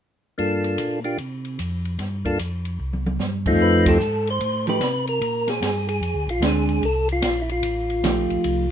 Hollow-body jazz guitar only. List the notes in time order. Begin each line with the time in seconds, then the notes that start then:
3.88 F3 A3 D#4 G4
4.67 F3 A3 D#4 G4
6.42 G#3 C4 D4
8.04 F3 A3 D#4 G4